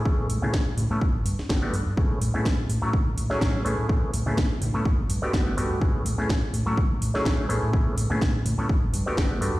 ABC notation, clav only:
X:1
M:4/4
L:1/16
Q:"Swing 16ths" 1/4=125
K:A
V:1 name="Clav"
[A,B,CEG]2 z [A,B,CEG] z3 [A,B,CEA] z4 [A,B,DF=G] [A,B,DFG] z2 | [A,B,CEG]2 z [A,B,CEG] z3 [F,A,CEA] z3 [F,A,CEG] [F,A,CEG]2 [A,B,CEG]2 | [A,B,CEG]2 z [A,B,CEG] z3 [A,B,CEA] z3 [A,B,DF=G] [A,B,DFG]2 [A,B,DFG]2 | [A,B,CEG]2 z [A,B,CEG] z3 [F,A,CEA] z3 [F,A,CEG] [F,A,CEG]2 [A,B,CEG]2 |
[A,B,CEG]2 z [A,B,CEG] z3 [A,B,CEA] z3 [A,B,DF=G] [A,B,DFG]2 [A,B,DFG]2 |]